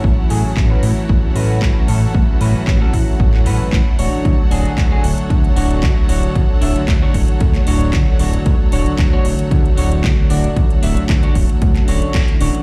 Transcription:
<<
  \new Staff \with { instrumentName = "Violin section" } { \time 4/4 \key d \lydian \tempo 4 = 114 << { <a' fis''>1~ | <a' fis''>1~ | <a' fis''>1~ | <a' fis''>1~ |
<a' fis''>1~ | <a' fis''>1 | } \\ { <e' cis''>1~ | <e' cis''>2.~ <e' cis''>8 cis''8~ | cis''1~ | cis''1~ |
cis''1~ | cis''1 | } >> }
  \new Staff \with { instrumentName = "Clean electric guitar" } { \time 4/4 \key d \lydian r8 <cis' fis' gis'>8 r16 <cis' fis' b'>16 r4 <cis' fis' b'>8 r8 <cis' fis' a'>8 | r8 <cis' fis' b'>8 r16 <cis' fis' a'>16 r4 <cis' fis' b'>8 r8 <d' fis' cis''>8~ | <d' fis' cis''>16 r16 <d' fis' gis'>8 r16 <d' fis' gis'>16 r4 <d' fis' cis''>8 r8 <d' fis' cis''>8 | r8 <d' fis' e''>8 r16 <d' fis' cis''>16 r4 <d' fis' cis''>8 r8 <d' fis' cis''>8 |
r8 <d' fis' cis''>8 r16 <d' fis' cis''>16 r4 <d' fis' cis''>8 r8 <d' fis' d''>8 | r8 <d' fis' e''>8 r16 <d' fis' cis''>16 r4 <d' fis' cis''>8 r8 <d' fis' cis''>8 | }
  \new Staff \with { instrumentName = "Analog synth pad" } { \time 4/4 \key d \lydian <e fis a cis' fis'>8 <e fis a cis' fis'>4.~ <e fis a cis' fis'>16 <e fis a cis' fis'>4.~ <e fis a cis' fis'>16~ | <e fis a cis' fis'>8 <e fis a cis' fis'>4.~ <e fis a cis' fis'>16 <e fis a cis' fis'>16 <e fis a cis' a'>16 r8 <e fis a cis' e'>16 <d fis a fis' cis''>8~ | <d fis a fis' cis''>8 <d fis a fis' cis''>4.~ <d fis a fis' cis''>16 <d fis a fis' cis''>4.~ <d fis a fis' cis''>16~ | <d fis a fis' cis''>8 <d fis a fis' cis''>4.~ <d fis a fis' cis''>16 <d fis a fis' cis''>4.~ <d fis a fis' cis''>16~ |
<d fis a fis' cis''>8 <d fis a fis' cis''>4.~ <d fis a fis' cis''>16 <d fis a fis'>4.~ <d fis a fis'>16~ | <d fis a fis'>8 <d fis a fis'>4.~ <d fis a fis'>16 <d fis a cis' fis'>16 <d fis a cis' a'>16 r8 <d fis a cis' e'>16 <e fis a cis' fis'>8 | }
  \new Staff \with { instrumentName = "Analog synth bass" } { \clef bass \time 4/4 \key d \lydian a,,16 r16 a,16 a,,16 a,,16 r16 a,16 r16 a,,16 r16 a,8 a,,16 r16 a,16 r16 | a,,16 r16 a,16 a,,16 a,,16 r16 a,16 r16 a,,8 a,16 a,,16 a,,16 r16 d,,16 r16 | d,16 r16 d,,16 d,16 d,16 r16 d,,16 r16 d,16 r16 d,,8 d,16 r16 d,,16 r16 | d,16 r16 d,,16 d,16 d,16 r16 d,,16 r16 d,16 r16 d,,8 d,16 r16 d,,16 r16 |
d,16 r16 d,,16 d,16 d,16 r16 d,,16 r16 d,16 r16 d,,8 d,16 r16 d,,16 r16 | d,16 r16 d,,16 d,16 d,16 r16 d,,16 r16 d,16 r16 d,,16 d,16 d,16 r16 d,,16 r16 | }
  \new DrumStaff \with { instrumentName = "Drums" } \drummode { \time 4/4 bd8 hho8 <hc bd>8 hho8 bd8 hho8 <hc bd>8 hho8 | bd8 hho8 <hc bd>8 <hho bd>8 bd16 hc16 hho8 <hc bd>8 hho8 | <hh bd>8 hho16 hh16 <hc hh bd>8 hho16 hh16 <hh bd>16 hh16 hho16 hh16 <hc hh bd>8 hho16 hh16 | <hh bd>8 hho16 hh16 <hc hh bd>8 <hho bd>16 hh16 <hh bd>16 <hc hh>16 hho16 hh16 <hc hh bd>8 hho16 hh16 |
<hh bd>8 hho16 hh16 <hc hh bd>8 hho16 hh16 <hh bd>16 hh16 hho16 hh16 <hc hh bd>8 hho16 hh16 | <hh bd>16 hh16 hho16 hh16 <hc hh bd>16 hh16 <hho bd>16 hh16 <hh bd>16 <hc hh>16 hho16 hh16 <hc hh bd>16 hh16 hho16 hh16 | }
>>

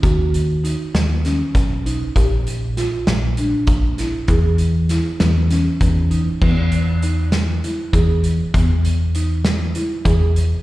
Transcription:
<<
  \new Staff \with { instrumentName = "Marimba" } { \time 7/8 \key e \lydian \tempo 4 = 99 fis'4 dis'4 cis'4 dis'8 | g'4 eis'4 d'4 e'8 | gis'4 e'4 cis'4 dis'8 | b4 dis'4 e'8 gis'4 |
b4 dis'4 e'8 gis'4 | }
  \new Staff \with { instrumentName = "Analog synth bass" } { \clef bass \time 7/8 \key e \lydian dis,4. dis,4 b,,4 | ais,,4. ais,,4 ais,,4 | e,4. e,4 e,4 | e,2~ e,8 e,4 |
e,2~ e,8 e,4 | }
  \new DrumStaff \with { instrumentName = "Drums" } \drummode { \time 7/8 <hh bd>8 hh8 hh8 <hh sn>8 <hh sn>8 <hh bd sn>8 hh8 | <hh bd>8 hh8 <hh sn>8 <hh sn>8 hh8 <hh bd>8 <hh sn>8 | <hh bd>8 hh8 <hh sn>8 <hh sn>8 <hh sn>8 <hh bd>8 hh8 | <cymc bd>8 hh8 hh8 <hh sn>8 hh8 <hh bd>8 hh8 |
<hh bd>8 hh8 hh8 <hh sn>8 hh8 <hh bd>8 hh8 | }
>>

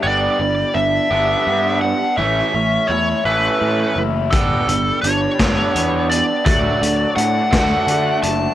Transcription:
<<
  \new Staff \with { instrumentName = "Lead electric guitar" } { \time 6/8 \key g \lydian \tempo 4. = 56 d''4 e''4. fis''8 | e''4 cis''8 b'4 r8 | a'4 cis''4. d''8 | d''4 fis''4. a''8 | }
  \new Staff \with { instrumentName = "Analog synth pad" } { \time 6/8 \key g \lydian << { r2. | r2. | a''2.~ | a''2. | } \\ { r2. | r2. | <g' b'>2. | <fis' d''>2. | } >> }
  \new Staff \with { instrumentName = "Overdriven electric guitar" } { \time 6/8 \key g \lydian g8 g8 d'8 a'8 b8 d'8 | cis'8 cis'8 e'8 a'8 cis'8 e'8 | g8 g8 d'8 a'8 b8 d'8 | fis8 fis8 d'8 a'8 a8 d'8 | }
  \new Staff \with { instrumentName = "Overdriven electric guitar" } { \time 6/8 \key g \lydian <b d' g'>8 <b d'>8 <b d'>8 <b d' g'>4 <b d'>8 | <e a cis'>8 <e a>8 <e a>8 <e a cis'>4 <e a>8 | <b d' g'>8 <b d'>8 <b d'>8 <b d' g'>4 <b d'>8 | <a d' fis'>8 <a d'>8 <a d'>8 <a d' fis'>4 <a d'>8 | }
  \new Staff \with { instrumentName = "Picked electric bass" } { \clef bass \time 6/8 \key g \lydian g,,8 g,,8 g,,8 g,,8 g,4 | a,,8 a,,8 e,8 a,,8 a,8 fis,,8 | g,,8 g,,8 g,,8 g,,8 e,4 | d,8 d,8 a,8 d,8 d8 fis,,8 | }
  \new DrumStaff \with { instrumentName = "Drums" } \drummode { \time 6/8 r4. r4. | r4. r4. | <hh bd>8 hh8 hh8 <hh bd sn>8 hh8 hh8 | <hh bd>8 hh8 hh8 <hh bd sn>8 hh8 hh8 | }
>>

